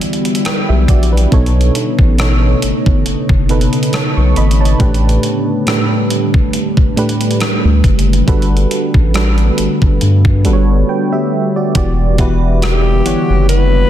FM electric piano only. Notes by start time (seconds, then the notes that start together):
Already playing: E3 B3 F#4 G4 D5
0.46 B4 G5
0.69 G4 E5
0.90 F#4 D5
1.13 D4 B4
1.31 B2 B3 D#4 A4 C#5
2.18 B2 B3 D#4 A4 C#5
3.49 B2 B3 D#4 A4 B4
3.94 C#5 A5
4.17 C#6
4.37 D#5 B5
4.61 C#5 A5
4.79 A2 A3 D4 G4 B4
5.66 A2 A3 D4 G4 B4
6.96 A2 A3 D4 G4 B4
8.27 G3 D4 F#4 A4 B4
9.14 G3 D4 F#4 A4 B4
10.45 G3 D4 F#4 A4 B4
10.53 C#5
10.89 B4 G5
11.13 G4 E5
11.56 F#4 D5
11.75 E3 B3 F#4 G4 D5
12.18 E3 B3 F#4 G4 B4
13.05 E3 B3 G4 C#5 F#5